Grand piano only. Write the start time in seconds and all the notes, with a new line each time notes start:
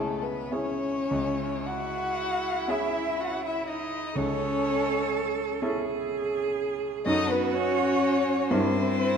Already playing: C#2 C#3 C#4 E4 G#4
0.51 C#4 E4 G#4
1.11 C#2
2.68 C#4 E4 G#4
4.16 C#2
5.62 C#4 E4 A4
7.06 F#2 C#4 D#4 A4
8.51 G2 C#4 E4 A#4